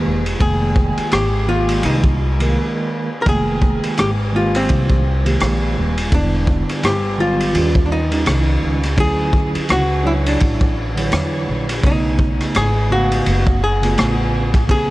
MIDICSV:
0, 0, Header, 1, 6, 480
1, 0, Start_track
1, 0, Tempo, 714286
1, 272, Time_signature, 4, 2, 24, 8
1, 10015, End_track
2, 0, Start_track
2, 0, Title_t, "Hollow-body jazz guitar"
2, 0, Program_c, 0, 26
2, 279, Note_on_c, 0, 68, 99
2, 755, Note_off_c, 0, 68, 0
2, 758, Note_on_c, 0, 67, 93
2, 999, Note_on_c, 0, 65, 84
2, 1002, Note_off_c, 0, 67, 0
2, 1242, Note_off_c, 0, 65, 0
2, 1244, Note_on_c, 0, 63, 70
2, 1931, Note_off_c, 0, 63, 0
2, 2164, Note_on_c, 0, 70, 75
2, 2197, Note_off_c, 0, 70, 0
2, 2209, Note_on_c, 0, 68, 96
2, 2685, Note_off_c, 0, 68, 0
2, 2687, Note_on_c, 0, 67, 89
2, 2750, Note_off_c, 0, 67, 0
2, 2929, Note_on_c, 0, 65, 78
2, 3064, Note_on_c, 0, 60, 75
2, 3066, Note_off_c, 0, 65, 0
2, 3851, Note_off_c, 0, 60, 0
2, 4129, Note_on_c, 0, 62, 81
2, 4601, Note_on_c, 0, 67, 90
2, 4615, Note_off_c, 0, 62, 0
2, 4841, Note_on_c, 0, 65, 94
2, 4844, Note_off_c, 0, 67, 0
2, 5278, Note_off_c, 0, 65, 0
2, 5281, Note_on_c, 0, 62, 55
2, 5316, Note_off_c, 0, 62, 0
2, 5322, Note_on_c, 0, 63, 78
2, 5770, Note_off_c, 0, 63, 0
2, 6049, Note_on_c, 0, 68, 103
2, 6526, Note_off_c, 0, 68, 0
2, 6529, Note_on_c, 0, 66, 96
2, 6764, Note_on_c, 0, 64, 83
2, 6767, Note_off_c, 0, 66, 0
2, 6801, Note_off_c, 0, 64, 0
2, 6906, Note_on_c, 0, 62, 76
2, 7692, Note_off_c, 0, 62, 0
2, 7972, Note_on_c, 0, 63, 87
2, 8446, Note_on_c, 0, 68, 99
2, 8456, Note_off_c, 0, 63, 0
2, 8681, Note_off_c, 0, 68, 0
2, 8683, Note_on_c, 0, 66, 92
2, 9161, Note_off_c, 0, 66, 0
2, 9164, Note_on_c, 0, 68, 89
2, 9611, Note_off_c, 0, 68, 0
2, 9885, Note_on_c, 0, 68, 105
2, 10015, Note_off_c, 0, 68, 0
2, 10015, End_track
3, 0, Start_track
3, 0, Title_t, "Tine electric piano"
3, 0, Program_c, 1, 4
3, 0, Note_on_c, 1, 51, 84
3, 0, Note_on_c, 1, 56, 72
3, 0, Note_on_c, 1, 58, 77
3, 0, Note_on_c, 1, 67, 85
3, 145, Note_off_c, 1, 51, 0
3, 153, Note_off_c, 1, 58, 0
3, 156, Note_off_c, 1, 67, 0
3, 171, Note_off_c, 1, 56, 0
3, 262, Note_on_c, 1, 51, 72
3, 269, Note_on_c, 1, 56, 66
3, 278, Note_on_c, 1, 58, 68
3, 284, Note_on_c, 1, 79, 79
3, 835, Note_off_c, 1, 51, 0
3, 838, Note_off_c, 1, 56, 0
3, 843, Note_off_c, 1, 58, 0
3, 846, Note_off_c, 1, 79, 0
3, 982, Note_on_c, 1, 51, 65
3, 990, Note_on_c, 1, 56, 60
3, 997, Note_on_c, 1, 58, 60
3, 1005, Note_on_c, 1, 65, 58
3, 1048, Note_on_c, 1, 67, 67
3, 1050, Note_off_c, 1, 65, 0
3, 1452, Note_off_c, 1, 51, 0
3, 1456, Note_off_c, 1, 56, 0
3, 1460, Note_off_c, 1, 58, 0
3, 1485, Note_off_c, 1, 67, 0
3, 1602, Note_on_c, 1, 51, 65
3, 1611, Note_on_c, 1, 56, 57
3, 1619, Note_on_c, 1, 58, 61
3, 1627, Note_on_c, 1, 70, 74
3, 2067, Note_off_c, 1, 51, 0
3, 2071, Note_off_c, 1, 56, 0
3, 2075, Note_off_c, 1, 58, 0
3, 2079, Note_off_c, 1, 70, 0
3, 2182, Note_on_c, 1, 51, 65
3, 2190, Note_on_c, 1, 56, 62
3, 2197, Note_on_c, 1, 58, 66
3, 2204, Note_on_c, 1, 79, 74
3, 2755, Note_off_c, 1, 51, 0
3, 2759, Note_off_c, 1, 56, 0
3, 2763, Note_off_c, 1, 58, 0
3, 2766, Note_off_c, 1, 79, 0
3, 2899, Note_on_c, 1, 51, 60
3, 2907, Note_on_c, 1, 56, 60
3, 2917, Note_on_c, 1, 58, 58
3, 2923, Note_on_c, 1, 67, 72
3, 3371, Note_off_c, 1, 51, 0
3, 3375, Note_off_c, 1, 56, 0
3, 3380, Note_off_c, 1, 58, 0
3, 3383, Note_off_c, 1, 67, 0
3, 3521, Note_on_c, 1, 51, 61
3, 3530, Note_on_c, 1, 56, 62
3, 3535, Note_on_c, 1, 58, 61
3, 3544, Note_on_c, 1, 67, 75
3, 3986, Note_off_c, 1, 51, 0
3, 3990, Note_off_c, 1, 56, 0
3, 3993, Note_off_c, 1, 58, 0
3, 3998, Note_off_c, 1, 67, 0
3, 4101, Note_on_c, 1, 50, 69
3, 4108, Note_on_c, 1, 55, 63
3, 4116, Note_on_c, 1, 59, 60
3, 4124, Note_on_c, 1, 64, 74
3, 4674, Note_off_c, 1, 50, 0
3, 4678, Note_off_c, 1, 55, 0
3, 4682, Note_off_c, 1, 59, 0
3, 4686, Note_off_c, 1, 64, 0
3, 4825, Note_on_c, 1, 50, 65
3, 4832, Note_on_c, 1, 55, 58
3, 4838, Note_on_c, 1, 59, 60
3, 4847, Note_on_c, 1, 54, 66
3, 5061, Note_off_c, 1, 55, 0
3, 5062, Note_on_c, 1, 51, 72
3, 5068, Note_off_c, 1, 50, 0
3, 5069, Note_on_c, 1, 55, 67
3, 5075, Note_off_c, 1, 59, 0
3, 5077, Note_on_c, 1, 61, 66
3, 5080, Note_off_c, 1, 54, 0
3, 5085, Note_on_c, 1, 65, 83
3, 5363, Note_off_c, 1, 51, 0
3, 5367, Note_off_c, 1, 55, 0
3, 5371, Note_off_c, 1, 61, 0
3, 5375, Note_off_c, 1, 65, 0
3, 5444, Note_on_c, 1, 51, 65
3, 5452, Note_on_c, 1, 55, 61
3, 5460, Note_on_c, 1, 61, 60
3, 5468, Note_on_c, 1, 63, 75
3, 5908, Note_off_c, 1, 51, 0
3, 5912, Note_off_c, 1, 55, 0
3, 5915, Note_off_c, 1, 61, 0
3, 5919, Note_off_c, 1, 63, 0
3, 6021, Note_on_c, 1, 50, 65
3, 6029, Note_on_c, 1, 54, 63
3, 6037, Note_on_c, 1, 61, 64
3, 6044, Note_on_c, 1, 64, 75
3, 6594, Note_off_c, 1, 50, 0
3, 6598, Note_off_c, 1, 54, 0
3, 6602, Note_off_c, 1, 61, 0
3, 6606, Note_off_c, 1, 64, 0
3, 6742, Note_on_c, 1, 62, 69
3, 6750, Note_on_c, 1, 54, 64
3, 6756, Note_on_c, 1, 73, 60
3, 6764, Note_on_c, 1, 63, 57
3, 6807, Note_on_c, 1, 64, 72
3, 6810, Note_off_c, 1, 63, 0
3, 7212, Note_off_c, 1, 62, 0
3, 7217, Note_off_c, 1, 54, 0
3, 7220, Note_off_c, 1, 73, 0
3, 7245, Note_off_c, 1, 64, 0
3, 7361, Note_on_c, 1, 50, 64
3, 7370, Note_on_c, 1, 54, 64
3, 7378, Note_on_c, 1, 73, 61
3, 7386, Note_on_c, 1, 64, 73
3, 7826, Note_off_c, 1, 50, 0
3, 7831, Note_off_c, 1, 54, 0
3, 7834, Note_off_c, 1, 73, 0
3, 7839, Note_off_c, 1, 64, 0
3, 7938, Note_on_c, 1, 49, 71
3, 7946, Note_on_c, 1, 57, 63
3, 7952, Note_on_c, 1, 59, 58
3, 7962, Note_on_c, 1, 63, 76
3, 8513, Note_off_c, 1, 49, 0
3, 8517, Note_off_c, 1, 57, 0
3, 8520, Note_off_c, 1, 59, 0
3, 8525, Note_off_c, 1, 63, 0
3, 8661, Note_on_c, 1, 49, 64
3, 8667, Note_on_c, 1, 57, 58
3, 8677, Note_on_c, 1, 59, 59
3, 8684, Note_on_c, 1, 77, 74
3, 9132, Note_off_c, 1, 49, 0
3, 9135, Note_off_c, 1, 57, 0
3, 9140, Note_off_c, 1, 59, 0
3, 9144, Note_off_c, 1, 77, 0
3, 9281, Note_on_c, 1, 49, 69
3, 9289, Note_on_c, 1, 57, 60
3, 9297, Note_on_c, 1, 59, 61
3, 9303, Note_on_c, 1, 65, 73
3, 9746, Note_off_c, 1, 49, 0
3, 9750, Note_off_c, 1, 57, 0
3, 9754, Note_off_c, 1, 59, 0
3, 9757, Note_off_c, 1, 65, 0
3, 9860, Note_on_c, 1, 49, 67
3, 9867, Note_on_c, 1, 58, 59
3, 9876, Note_on_c, 1, 60, 62
3, 9882, Note_on_c, 1, 67, 60
3, 9925, Note_on_c, 1, 68, 76
3, 9929, Note_off_c, 1, 67, 0
3, 10015, Note_off_c, 1, 49, 0
3, 10015, Note_off_c, 1, 58, 0
3, 10015, Note_off_c, 1, 60, 0
3, 10015, Note_off_c, 1, 68, 0
3, 10015, End_track
4, 0, Start_track
4, 0, Title_t, "Upright bass"
4, 0, Program_c, 2, 32
4, 35, Note_on_c, 2, 28, 84
4, 262, Note_off_c, 2, 28, 0
4, 274, Note_on_c, 2, 29, 88
4, 635, Note_off_c, 2, 29, 0
4, 755, Note_on_c, 2, 32, 72
4, 1210, Note_off_c, 2, 32, 0
4, 1235, Note_on_c, 2, 36, 94
4, 1713, Note_off_c, 2, 36, 0
4, 2193, Note_on_c, 2, 29, 88
4, 2555, Note_off_c, 2, 29, 0
4, 2678, Note_on_c, 2, 32, 84
4, 3132, Note_off_c, 2, 32, 0
4, 3160, Note_on_c, 2, 36, 89
4, 3612, Note_off_c, 2, 36, 0
4, 3638, Note_on_c, 2, 34, 82
4, 3863, Note_off_c, 2, 34, 0
4, 3879, Note_on_c, 2, 27, 83
4, 4104, Note_off_c, 2, 27, 0
4, 4115, Note_on_c, 2, 28, 94
4, 4476, Note_off_c, 2, 28, 0
4, 4595, Note_on_c, 2, 31, 86
4, 5050, Note_off_c, 2, 31, 0
4, 5077, Note_on_c, 2, 39, 94
4, 5531, Note_off_c, 2, 39, 0
4, 5555, Note_on_c, 2, 36, 93
4, 5782, Note_off_c, 2, 36, 0
4, 5796, Note_on_c, 2, 37, 83
4, 6022, Note_off_c, 2, 37, 0
4, 6035, Note_on_c, 2, 38, 84
4, 6396, Note_off_c, 2, 38, 0
4, 6514, Note_on_c, 2, 37, 81
4, 6969, Note_off_c, 2, 37, 0
4, 6998, Note_on_c, 2, 33, 84
4, 7451, Note_off_c, 2, 33, 0
4, 7474, Note_on_c, 2, 40, 84
4, 7701, Note_off_c, 2, 40, 0
4, 7716, Note_on_c, 2, 34, 79
4, 7942, Note_off_c, 2, 34, 0
4, 7956, Note_on_c, 2, 35, 88
4, 8316, Note_off_c, 2, 35, 0
4, 8436, Note_on_c, 2, 32, 81
4, 8890, Note_off_c, 2, 32, 0
4, 8916, Note_on_c, 2, 30, 83
4, 9370, Note_off_c, 2, 30, 0
4, 9395, Note_on_c, 2, 33, 94
4, 9850, Note_off_c, 2, 33, 0
4, 9875, Note_on_c, 2, 34, 84
4, 10015, Note_off_c, 2, 34, 0
4, 10015, End_track
5, 0, Start_track
5, 0, Title_t, "Muted upright bass strokes"
5, 655, Note_on_c, 9, 29, 44
5, 722, Note_off_c, 9, 29, 0
5, 2580, Note_on_c, 9, 29, 41
5, 2647, Note_off_c, 9, 29, 0
5, 4498, Note_on_c, 9, 29, 45
5, 4565, Note_off_c, 9, 29, 0
5, 6416, Note_on_c, 9, 29, 45
5, 6483, Note_off_c, 9, 29, 0
5, 8337, Note_on_c, 9, 29, 42
5, 8404, Note_off_c, 9, 29, 0
5, 10015, End_track
6, 0, Start_track
6, 0, Title_t, "Drums"
6, 175, Note_on_c, 9, 51, 55
6, 243, Note_off_c, 9, 51, 0
6, 272, Note_on_c, 9, 36, 94
6, 273, Note_on_c, 9, 51, 68
6, 340, Note_off_c, 9, 36, 0
6, 340, Note_off_c, 9, 51, 0
6, 509, Note_on_c, 9, 36, 81
6, 576, Note_off_c, 9, 36, 0
6, 656, Note_on_c, 9, 51, 56
6, 723, Note_off_c, 9, 51, 0
6, 750, Note_on_c, 9, 44, 51
6, 750, Note_on_c, 9, 51, 64
6, 760, Note_on_c, 9, 37, 114
6, 817, Note_off_c, 9, 44, 0
6, 817, Note_off_c, 9, 51, 0
6, 827, Note_off_c, 9, 37, 0
6, 1134, Note_on_c, 9, 51, 65
6, 1201, Note_off_c, 9, 51, 0
6, 1230, Note_on_c, 9, 51, 61
6, 1297, Note_off_c, 9, 51, 0
6, 1369, Note_on_c, 9, 36, 91
6, 1436, Note_off_c, 9, 36, 0
6, 1615, Note_on_c, 9, 51, 61
6, 1682, Note_off_c, 9, 51, 0
6, 2192, Note_on_c, 9, 51, 69
6, 2193, Note_on_c, 9, 36, 94
6, 2259, Note_off_c, 9, 51, 0
6, 2260, Note_off_c, 9, 36, 0
6, 2430, Note_on_c, 9, 36, 81
6, 2497, Note_off_c, 9, 36, 0
6, 2577, Note_on_c, 9, 51, 55
6, 2645, Note_off_c, 9, 51, 0
6, 2672, Note_on_c, 9, 44, 51
6, 2672, Note_on_c, 9, 51, 68
6, 2682, Note_on_c, 9, 37, 115
6, 2739, Note_off_c, 9, 44, 0
6, 2739, Note_off_c, 9, 51, 0
6, 2749, Note_off_c, 9, 37, 0
6, 3056, Note_on_c, 9, 51, 65
6, 3123, Note_off_c, 9, 51, 0
6, 3151, Note_on_c, 9, 51, 61
6, 3158, Note_on_c, 9, 36, 86
6, 3218, Note_off_c, 9, 51, 0
6, 3225, Note_off_c, 9, 36, 0
6, 3289, Note_on_c, 9, 36, 86
6, 3357, Note_off_c, 9, 36, 0
6, 3535, Note_on_c, 9, 51, 57
6, 3602, Note_off_c, 9, 51, 0
6, 3631, Note_on_c, 9, 44, 48
6, 3631, Note_on_c, 9, 51, 69
6, 3639, Note_on_c, 9, 37, 97
6, 3698, Note_off_c, 9, 44, 0
6, 3698, Note_off_c, 9, 51, 0
6, 3706, Note_off_c, 9, 37, 0
6, 4016, Note_on_c, 9, 51, 57
6, 4083, Note_off_c, 9, 51, 0
6, 4113, Note_on_c, 9, 36, 99
6, 4113, Note_on_c, 9, 51, 69
6, 4180, Note_off_c, 9, 36, 0
6, 4180, Note_off_c, 9, 51, 0
6, 4349, Note_on_c, 9, 36, 84
6, 4417, Note_off_c, 9, 36, 0
6, 4498, Note_on_c, 9, 51, 57
6, 4500, Note_on_c, 9, 37, 30
6, 4565, Note_off_c, 9, 51, 0
6, 4567, Note_off_c, 9, 37, 0
6, 4592, Note_on_c, 9, 44, 47
6, 4592, Note_on_c, 9, 51, 65
6, 4602, Note_on_c, 9, 37, 104
6, 4659, Note_off_c, 9, 44, 0
6, 4659, Note_off_c, 9, 51, 0
6, 4669, Note_off_c, 9, 37, 0
6, 4976, Note_on_c, 9, 51, 64
6, 5043, Note_off_c, 9, 51, 0
6, 5072, Note_on_c, 9, 51, 63
6, 5139, Note_off_c, 9, 51, 0
6, 5209, Note_on_c, 9, 36, 90
6, 5277, Note_off_c, 9, 36, 0
6, 5455, Note_on_c, 9, 51, 59
6, 5522, Note_off_c, 9, 51, 0
6, 5551, Note_on_c, 9, 44, 49
6, 5551, Note_on_c, 9, 51, 72
6, 5559, Note_on_c, 9, 37, 102
6, 5618, Note_off_c, 9, 44, 0
6, 5618, Note_off_c, 9, 51, 0
6, 5626, Note_off_c, 9, 37, 0
6, 5937, Note_on_c, 9, 51, 51
6, 5940, Note_on_c, 9, 37, 32
6, 6004, Note_off_c, 9, 51, 0
6, 6007, Note_off_c, 9, 37, 0
6, 6032, Note_on_c, 9, 51, 69
6, 6033, Note_on_c, 9, 36, 95
6, 6099, Note_off_c, 9, 51, 0
6, 6100, Note_off_c, 9, 36, 0
6, 6270, Note_on_c, 9, 36, 82
6, 6337, Note_off_c, 9, 36, 0
6, 6419, Note_on_c, 9, 51, 56
6, 6486, Note_off_c, 9, 51, 0
6, 6510, Note_on_c, 9, 44, 45
6, 6510, Note_on_c, 9, 51, 65
6, 6521, Note_on_c, 9, 37, 110
6, 6578, Note_off_c, 9, 44, 0
6, 6578, Note_off_c, 9, 51, 0
6, 6588, Note_off_c, 9, 37, 0
6, 6897, Note_on_c, 9, 51, 66
6, 6964, Note_off_c, 9, 51, 0
6, 6991, Note_on_c, 9, 51, 65
6, 6998, Note_on_c, 9, 36, 93
6, 7058, Note_off_c, 9, 51, 0
6, 7065, Note_off_c, 9, 36, 0
6, 7129, Note_on_c, 9, 36, 89
6, 7196, Note_off_c, 9, 36, 0
6, 7374, Note_on_c, 9, 51, 62
6, 7441, Note_off_c, 9, 51, 0
6, 7471, Note_on_c, 9, 44, 49
6, 7471, Note_on_c, 9, 51, 66
6, 7479, Note_on_c, 9, 37, 107
6, 7539, Note_off_c, 9, 44, 0
6, 7539, Note_off_c, 9, 51, 0
6, 7546, Note_off_c, 9, 37, 0
6, 7856, Note_on_c, 9, 51, 56
6, 7860, Note_on_c, 9, 37, 35
6, 7924, Note_off_c, 9, 51, 0
6, 7927, Note_off_c, 9, 37, 0
6, 7953, Note_on_c, 9, 36, 95
6, 7953, Note_on_c, 9, 51, 68
6, 8020, Note_off_c, 9, 36, 0
6, 8020, Note_off_c, 9, 51, 0
6, 8190, Note_on_c, 9, 36, 85
6, 8257, Note_off_c, 9, 36, 0
6, 8336, Note_on_c, 9, 51, 54
6, 8338, Note_on_c, 9, 37, 29
6, 8404, Note_off_c, 9, 51, 0
6, 8405, Note_off_c, 9, 37, 0
6, 8431, Note_on_c, 9, 44, 52
6, 8431, Note_on_c, 9, 51, 67
6, 8442, Note_on_c, 9, 37, 105
6, 8498, Note_off_c, 9, 44, 0
6, 8498, Note_off_c, 9, 51, 0
6, 8509, Note_off_c, 9, 37, 0
6, 8815, Note_on_c, 9, 51, 63
6, 8882, Note_off_c, 9, 51, 0
6, 8913, Note_on_c, 9, 51, 64
6, 8980, Note_off_c, 9, 51, 0
6, 9050, Note_on_c, 9, 36, 94
6, 9117, Note_off_c, 9, 36, 0
6, 9294, Note_on_c, 9, 51, 63
6, 9361, Note_off_c, 9, 51, 0
6, 9393, Note_on_c, 9, 44, 48
6, 9393, Note_on_c, 9, 51, 68
6, 9401, Note_on_c, 9, 37, 102
6, 9460, Note_off_c, 9, 44, 0
6, 9460, Note_off_c, 9, 51, 0
6, 9468, Note_off_c, 9, 37, 0
6, 9771, Note_on_c, 9, 36, 93
6, 9776, Note_on_c, 9, 51, 53
6, 9779, Note_on_c, 9, 37, 33
6, 9838, Note_off_c, 9, 36, 0
6, 9843, Note_off_c, 9, 51, 0
6, 9846, Note_off_c, 9, 37, 0
6, 9873, Note_on_c, 9, 36, 94
6, 9874, Note_on_c, 9, 51, 66
6, 9940, Note_off_c, 9, 36, 0
6, 9941, Note_off_c, 9, 51, 0
6, 10015, End_track
0, 0, End_of_file